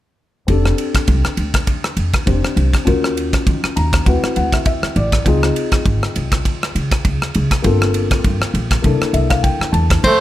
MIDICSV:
0, 0, Header, 1, 7, 480
1, 0, Start_track
1, 0, Key_signature, -1, "major"
1, 0, Tempo, 596777
1, 388, Time_signature, 4, 2, 24, 8
1, 8206, End_track
2, 0, Start_track
2, 0, Title_t, "Soprano saxophone"
2, 0, Program_c, 0, 64
2, 8075, Note_on_c, 0, 72, 90
2, 8206, Note_off_c, 0, 72, 0
2, 8206, End_track
3, 0, Start_track
3, 0, Title_t, "Grand piano"
3, 0, Program_c, 1, 0
3, 377, Note_on_c, 1, 60, 54
3, 386, Note_on_c, 1, 62, 51
3, 395, Note_on_c, 1, 67, 51
3, 401, Note_on_c, 1, 69, 57
3, 1793, Note_off_c, 1, 60, 0
3, 1798, Note_off_c, 1, 62, 0
3, 1803, Note_off_c, 1, 67, 0
3, 1805, Note_off_c, 1, 69, 0
3, 1816, Note_on_c, 1, 60, 43
3, 1816, Note_on_c, 1, 62, 38
3, 1824, Note_on_c, 1, 67, 40
3, 1827, Note_on_c, 1, 72, 47
3, 2291, Note_on_c, 1, 61, 57
3, 2297, Note_on_c, 1, 65, 50
3, 2302, Note_off_c, 1, 60, 0
3, 2302, Note_off_c, 1, 62, 0
3, 2306, Note_off_c, 1, 67, 0
3, 2307, Note_off_c, 1, 72, 0
3, 2307, Note_on_c, 1, 66, 52
3, 2316, Note_on_c, 1, 70, 64
3, 3026, Note_on_c, 1, 82, 52
3, 3240, Note_off_c, 1, 61, 0
3, 3243, Note_off_c, 1, 65, 0
3, 3248, Note_off_c, 1, 66, 0
3, 3250, Note_off_c, 1, 82, 0
3, 3253, Note_off_c, 1, 70, 0
3, 3261, Note_on_c, 1, 60, 51
3, 3268, Note_on_c, 1, 64, 47
3, 3274, Note_on_c, 1, 78, 50
3, 3276, Note_on_c, 1, 66, 47
3, 3284, Note_on_c, 1, 71, 58
3, 3494, Note_off_c, 1, 78, 0
3, 3510, Note_on_c, 1, 78, 56
3, 3632, Note_off_c, 1, 78, 0
3, 3647, Note_on_c, 1, 76, 49
3, 3740, Note_off_c, 1, 76, 0
3, 3752, Note_on_c, 1, 76, 58
3, 3973, Note_off_c, 1, 76, 0
3, 3992, Note_on_c, 1, 74, 56
3, 4205, Note_off_c, 1, 60, 0
3, 4208, Note_off_c, 1, 64, 0
3, 4213, Note_off_c, 1, 66, 0
3, 4213, Note_off_c, 1, 74, 0
3, 4216, Note_off_c, 1, 71, 0
3, 4219, Note_on_c, 1, 60, 58
3, 4231, Note_on_c, 1, 63, 54
3, 4237, Note_on_c, 1, 65, 54
3, 4243, Note_on_c, 1, 68, 64
3, 6111, Note_off_c, 1, 60, 0
3, 6117, Note_off_c, 1, 63, 0
3, 6120, Note_off_c, 1, 65, 0
3, 6123, Note_off_c, 1, 68, 0
3, 6132, Note_on_c, 1, 58, 62
3, 6142, Note_on_c, 1, 60, 55
3, 6148, Note_on_c, 1, 65, 54
3, 6159, Note_on_c, 1, 69, 66
3, 7080, Note_off_c, 1, 58, 0
3, 7086, Note_off_c, 1, 60, 0
3, 7089, Note_off_c, 1, 65, 0
3, 7094, Note_off_c, 1, 69, 0
3, 7097, Note_on_c, 1, 58, 54
3, 7104, Note_on_c, 1, 62, 48
3, 7113, Note_on_c, 1, 64, 51
3, 7122, Note_on_c, 1, 69, 60
3, 7349, Note_on_c, 1, 76, 55
3, 7471, Note_off_c, 1, 76, 0
3, 7480, Note_on_c, 1, 77, 54
3, 7580, Note_off_c, 1, 77, 0
3, 7586, Note_on_c, 1, 79, 60
3, 7810, Note_off_c, 1, 79, 0
3, 7819, Note_on_c, 1, 81, 60
3, 8043, Note_off_c, 1, 58, 0
3, 8046, Note_off_c, 1, 62, 0
3, 8046, Note_off_c, 1, 81, 0
3, 8051, Note_off_c, 1, 64, 0
3, 8056, Note_off_c, 1, 69, 0
3, 8206, End_track
4, 0, Start_track
4, 0, Title_t, "Tenor saxophone"
4, 0, Program_c, 2, 66
4, 8093, Note_on_c, 2, 57, 79
4, 8206, Note_off_c, 2, 57, 0
4, 8206, End_track
5, 0, Start_track
5, 0, Title_t, "Upright bass"
5, 0, Program_c, 3, 32
5, 387, Note_on_c, 3, 29, 74
5, 569, Note_off_c, 3, 29, 0
5, 870, Note_on_c, 3, 36, 76
5, 969, Note_off_c, 3, 36, 0
5, 1105, Note_on_c, 3, 38, 65
5, 1288, Note_off_c, 3, 38, 0
5, 1582, Note_on_c, 3, 41, 66
5, 1684, Note_off_c, 3, 41, 0
5, 1827, Note_on_c, 3, 29, 65
5, 1927, Note_off_c, 3, 29, 0
5, 2064, Note_on_c, 3, 36, 70
5, 2165, Note_off_c, 3, 36, 0
5, 2311, Note_on_c, 3, 39, 76
5, 2674, Note_off_c, 3, 39, 0
5, 2788, Note_on_c, 3, 51, 70
5, 2888, Note_off_c, 3, 51, 0
5, 3031, Note_on_c, 3, 39, 69
5, 3211, Note_off_c, 3, 39, 0
5, 3268, Note_on_c, 3, 38, 78
5, 3368, Note_off_c, 3, 38, 0
5, 3511, Note_on_c, 3, 38, 68
5, 3792, Note_off_c, 3, 38, 0
5, 3989, Note_on_c, 3, 33, 76
5, 4170, Note_off_c, 3, 33, 0
5, 4231, Note_on_c, 3, 37, 77
5, 4412, Note_off_c, 3, 37, 0
5, 4710, Note_on_c, 3, 32, 79
5, 4809, Note_off_c, 3, 32, 0
5, 4955, Note_on_c, 3, 36, 66
5, 5134, Note_off_c, 3, 36, 0
5, 5431, Note_on_c, 3, 49, 68
5, 5530, Note_off_c, 3, 49, 0
5, 5669, Note_on_c, 3, 37, 72
5, 5769, Note_off_c, 3, 37, 0
5, 5916, Note_on_c, 3, 37, 74
5, 6013, Note_off_c, 3, 37, 0
5, 6147, Note_on_c, 3, 31, 79
5, 6511, Note_off_c, 3, 31, 0
5, 6632, Note_on_c, 3, 43, 69
5, 6730, Note_off_c, 3, 43, 0
5, 6867, Note_on_c, 3, 34, 68
5, 7049, Note_off_c, 3, 34, 0
5, 7113, Note_on_c, 3, 36, 86
5, 7211, Note_off_c, 3, 36, 0
5, 7346, Note_on_c, 3, 36, 67
5, 7628, Note_off_c, 3, 36, 0
5, 7824, Note_on_c, 3, 40, 76
5, 8007, Note_off_c, 3, 40, 0
5, 8074, Note_on_c, 3, 41, 85
5, 8206, Note_off_c, 3, 41, 0
5, 8206, End_track
6, 0, Start_track
6, 0, Title_t, "Muted upright bass strokes"
6, 760, Note_on_c, 9, 29, 27
6, 841, Note_off_c, 9, 29, 0
6, 998, Note_on_c, 9, 29, 29
6, 1078, Note_off_c, 9, 29, 0
6, 2922, Note_on_c, 9, 29, 29
6, 3003, Note_off_c, 9, 29, 0
6, 3404, Note_on_c, 9, 29, 31
6, 3485, Note_off_c, 9, 29, 0
6, 3881, Note_on_c, 9, 29, 31
6, 3961, Note_off_c, 9, 29, 0
6, 4604, Note_on_c, 9, 29, 28
6, 4684, Note_off_c, 9, 29, 0
6, 6760, Note_on_c, 9, 29, 32
6, 6841, Note_off_c, 9, 29, 0
6, 7245, Note_on_c, 9, 29, 32
6, 7326, Note_off_c, 9, 29, 0
6, 7719, Note_on_c, 9, 29, 31
6, 7800, Note_off_c, 9, 29, 0
6, 8206, End_track
7, 0, Start_track
7, 0, Title_t, "Drums"
7, 387, Note_on_c, 9, 51, 45
7, 388, Note_on_c, 9, 36, 60
7, 467, Note_off_c, 9, 51, 0
7, 468, Note_off_c, 9, 36, 0
7, 527, Note_on_c, 9, 37, 62
7, 607, Note_off_c, 9, 37, 0
7, 628, Note_on_c, 9, 51, 48
7, 709, Note_off_c, 9, 51, 0
7, 760, Note_on_c, 9, 36, 65
7, 761, Note_on_c, 9, 51, 49
7, 768, Note_on_c, 9, 37, 63
7, 841, Note_off_c, 9, 36, 0
7, 842, Note_off_c, 9, 51, 0
7, 849, Note_off_c, 9, 37, 0
7, 865, Note_on_c, 9, 51, 48
7, 868, Note_on_c, 9, 36, 81
7, 945, Note_off_c, 9, 51, 0
7, 948, Note_off_c, 9, 36, 0
7, 1004, Note_on_c, 9, 37, 65
7, 1084, Note_off_c, 9, 37, 0
7, 1103, Note_on_c, 9, 51, 45
7, 1184, Note_off_c, 9, 51, 0
7, 1238, Note_on_c, 9, 36, 69
7, 1238, Note_on_c, 9, 51, 52
7, 1245, Note_on_c, 9, 37, 69
7, 1318, Note_off_c, 9, 51, 0
7, 1319, Note_off_c, 9, 36, 0
7, 1326, Note_off_c, 9, 37, 0
7, 1344, Note_on_c, 9, 51, 49
7, 1346, Note_on_c, 9, 36, 68
7, 1424, Note_off_c, 9, 51, 0
7, 1427, Note_off_c, 9, 36, 0
7, 1482, Note_on_c, 9, 37, 62
7, 1563, Note_off_c, 9, 37, 0
7, 1582, Note_on_c, 9, 51, 50
7, 1662, Note_off_c, 9, 51, 0
7, 1716, Note_on_c, 9, 51, 51
7, 1718, Note_on_c, 9, 36, 67
7, 1724, Note_on_c, 9, 37, 64
7, 1797, Note_off_c, 9, 51, 0
7, 1799, Note_off_c, 9, 36, 0
7, 1804, Note_off_c, 9, 37, 0
7, 1825, Note_on_c, 9, 51, 54
7, 1826, Note_on_c, 9, 36, 89
7, 1906, Note_off_c, 9, 51, 0
7, 1907, Note_off_c, 9, 36, 0
7, 1967, Note_on_c, 9, 37, 67
7, 2047, Note_off_c, 9, 37, 0
7, 2066, Note_on_c, 9, 51, 46
7, 2146, Note_off_c, 9, 51, 0
7, 2200, Note_on_c, 9, 36, 64
7, 2201, Note_on_c, 9, 51, 48
7, 2208, Note_on_c, 9, 37, 64
7, 2280, Note_off_c, 9, 36, 0
7, 2282, Note_off_c, 9, 51, 0
7, 2289, Note_off_c, 9, 37, 0
7, 2308, Note_on_c, 9, 36, 63
7, 2308, Note_on_c, 9, 51, 45
7, 2388, Note_off_c, 9, 51, 0
7, 2389, Note_off_c, 9, 36, 0
7, 2447, Note_on_c, 9, 37, 62
7, 2528, Note_off_c, 9, 37, 0
7, 2552, Note_on_c, 9, 51, 47
7, 2633, Note_off_c, 9, 51, 0
7, 2680, Note_on_c, 9, 36, 68
7, 2681, Note_on_c, 9, 51, 47
7, 2688, Note_on_c, 9, 37, 68
7, 2760, Note_off_c, 9, 36, 0
7, 2761, Note_off_c, 9, 51, 0
7, 2769, Note_off_c, 9, 37, 0
7, 2789, Note_on_c, 9, 36, 76
7, 2790, Note_on_c, 9, 51, 43
7, 2869, Note_off_c, 9, 36, 0
7, 2870, Note_off_c, 9, 51, 0
7, 2927, Note_on_c, 9, 37, 69
7, 3007, Note_off_c, 9, 37, 0
7, 3030, Note_on_c, 9, 51, 46
7, 3110, Note_off_c, 9, 51, 0
7, 3160, Note_on_c, 9, 36, 71
7, 3161, Note_on_c, 9, 51, 46
7, 3168, Note_on_c, 9, 37, 69
7, 3241, Note_off_c, 9, 36, 0
7, 3241, Note_off_c, 9, 51, 0
7, 3248, Note_off_c, 9, 37, 0
7, 3268, Note_on_c, 9, 36, 64
7, 3268, Note_on_c, 9, 51, 45
7, 3348, Note_off_c, 9, 51, 0
7, 3349, Note_off_c, 9, 36, 0
7, 3408, Note_on_c, 9, 37, 67
7, 3489, Note_off_c, 9, 37, 0
7, 3507, Note_on_c, 9, 51, 48
7, 3587, Note_off_c, 9, 51, 0
7, 3639, Note_on_c, 9, 36, 65
7, 3641, Note_on_c, 9, 51, 45
7, 3649, Note_on_c, 9, 37, 66
7, 3720, Note_off_c, 9, 36, 0
7, 3722, Note_off_c, 9, 51, 0
7, 3729, Note_off_c, 9, 37, 0
7, 3744, Note_on_c, 9, 51, 49
7, 3747, Note_on_c, 9, 36, 90
7, 3824, Note_off_c, 9, 51, 0
7, 3828, Note_off_c, 9, 36, 0
7, 3886, Note_on_c, 9, 37, 63
7, 3966, Note_off_c, 9, 37, 0
7, 3989, Note_on_c, 9, 51, 43
7, 4069, Note_off_c, 9, 51, 0
7, 4121, Note_on_c, 9, 36, 63
7, 4121, Note_on_c, 9, 51, 47
7, 4128, Note_on_c, 9, 37, 66
7, 4201, Note_off_c, 9, 36, 0
7, 4201, Note_off_c, 9, 51, 0
7, 4208, Note_off_c, 9, 37, 0
7, 4229, Note_on_c, 9, 36, 65
7, 4231, Note_on_c, 9, 51, 48
7, 4309, Note_off_c, 9, 36, 0
7, 4312, Note_off_c, 9, 51, 0
7, 4369, Note_on_c, 9, 37, 66
7, 4449, Note_off_c, 9, 37, 0
7, 4473, Note_on_c, 9, 51, 49
7, 4553, Note_off_c, 9, 51, 0
7, 4598, Note_on_c, 9, 51, 50
7, 4601, Note_on_c, 9, 36, 67
7, 4605, Note_on_c, 9, 37, 63
7, 4679, Note_off_c, 9, 51, 0
7, 4681, Note_off_c, 9, 36, 0
7, 4686, Note_off_c, 9, 37, 0
7, 4710, Note_on_c, 9, 36, 85
7, 4711, Note_on_c, 9, 51, 50
7, 4790, Note_off_c, 9, 36, 0
7, 4792, Note_off_c, 9, 51, 0
7, 4850, Note_on_c, 9, 37, 68
7, 4930, Note_off_c, 9, 37, 0
7, 4951, Note_on_c, 9, 51, 51
7, 5032, Note_off_c, 9, 51, 0
7, 5081, Note_on_c, 9, 36, 72
7, 5081, Note_on_c, 9, 51, 53
7, 5088, Note_on_c, 9, 37, 71
7, 5161, Note_off_c, 9, 51, 0
7, 5162, Note_off_c, 9, 36, 0
7, 5169, Note_off_c, 9, 37, 0
7, 5190, Note_on_c, 9, 36, 64
7, 5192, Note_on_c, 9, 51, 49
7, 5271, Note_off_c, 9, 36, 0
7, 5272, Note_off_c, 9, 51, 0
7, 5333, Note_on_c, 9, 37, 68
7, 5414, Note_off_c, 9, 37, 0
7, 5434, Note_on_c, 9, 51, 53
7, 5514, Note_off_c, 9, 51, 0
7, 5561, Note_on_c, 9, 51, 52
7, 5562, Note_on_c, 9, 36, 71
7, 5569, Note_on_c, 9, 37, 68
7, 5642, Note_off_c, 9, 36, 0
7, 5642, Note_off_c, 9, 51, 0
7, 5649, Note_off_c, 9, 37, 0
7, 5669, Note_on_c, 9, 36, 92
7, 5669, Note_on_c, 9, 51, 55
7, 5749, Note_off_c, 9, 51, 0
7, 5750, Note_off_c, 9, 36, 0
7, 5808, Note_on_c, 9, 37, 69
7, 5889, Note_off_c, 9, 37, 0
7, 5908, Note_on_c, 9, 51, 50
7, 5988, Note_off_c, 9, 51, 0
7, 6041, Note_on_c, 9, 36, 65
7, 6041, Note_on_c, 9, 51, 52
7, 6048, Note_on_c, 9, 37, 72
7, 6121, Note_off_c, 9, 36, 0
7, 6121, Note_off_c, 9, 51, 0
7, 6129, Note_off_c, 9, 37, 0
7, 6145, Note_on_c, 9, 51, 49
7, 6149, Note_on_c, 9, 36, 69
7, 6226, Note_off_c, 9, 51, 0
7, 6230, Note_off_c, 9, 36, 0
7, 6288, Note_on_c, 9, 37, 71
7, 6369, Note_off_c, 9, 37, 0
7, 6387, Note_on_c, 9, 51, 51
7, 6467, Note_off_c, 9, 51, 0
7, 6521, Note_on_c, 9, 51, 51
7, 6523, Note_on_c, 9, 36, 68
7, 6529, Note_on_c, 9, 37, 68
7, 6602, Note_off_c, 9, 51, 0
7, 6603, Note_off_c, 9, 36, 0
7, 6609, Note_off_c, 9, 37, 0
7, 6630, Note_on_c, 9, 51, 51
7, 6632, Note_on_c, 9, 36, 83
7, 6711, Note_off_c, 9, 51, 0
7, 6712, Note_off_c, 9, 36, 0
7, 6769, Note_on_c, 9, 37, 68
7, 6850, Note_off_c, 9, 37, 0
7, 6874, Note_on_c, 9, 51, 48
7, 6954, Note_off_c, 9, 51, 0
7, 7004, Note_on_c, 9, 36, 74
7, 7004, Note_on_c, 9, 51, 52
7, 7011, Note_on_c, 9, 37, 72
7, 7084, Note_off_c, 9, 36, 0
7, 7084, Note_off_c, 9, 51, 0
7, 7091, Note_off_c, 9, 37, 0
7, 7111, Note_on_c, 9, 51, 51
7, 7112, Note_on_c, 9, 36, 72
7, 7191, Note_off_c, 9, 51, 0
7, 7192, Note_off_c, 9, 36, 0
7, 7252, Note_on_c, 9, 37, 70
7, 7333, Note_off_c, 9, 37, 0
7, 7350, Note_on_c, 9, 51, 50
7, 7431, Note_off_c, 9, 51, 0
7, 7482, Note_on_c, 9, 51, 51
7, 7484, Note_on_c, 9, 36, 69
7, 7490, Note_on_c, 9, 37, 73
7, 7563, Note_off_c, 9, 51, 0
7, 7564, Note_off_c, 9, 36, 0
7, 7570, Note_off_c, 9, 37, 0
7, 7591, Note_on_c, 9, 51, 51
7, 7592, Note_on_c, 9, 36, 98
7, 7672, Note_off_c, 9, 51, 0
7, 7673, Note_off_c, 9, 36, 0
7, 7733, Note_on_c, 9, 37, 69
7, 7813, Note_off_c, 9, 37, 0
7, 7832, Note_on_c, 9, 51, 44
7, 7912, Note_off_c, 9, 51, 0
7, 7966, Note_on_c, 9, 36, 72
7, 7966, Note_on_c, 9, 51, 46
7, 7973, Note_on_c, 9, 37, 71
7, 8046, Note_off_c, 9, 36, 0
7, 8047, Note_off_c, 9, 51, 0
7, 8054, Note_off_c, 9, 37, 0
7, 8069, Note_on_c, 9, 62, 26
7, 8074, Note_on_c, 9, 36, 68
7, 8075, Note_on_c, 9, 49, 76
7, 8149, Note_off_c, 9, 62, 0
7, 8155, Note_off_c, 9, 36, 0
7, 8156, Note_off_c, 9, 49, 0
7, 8206, End_track
0, 0, End_of_file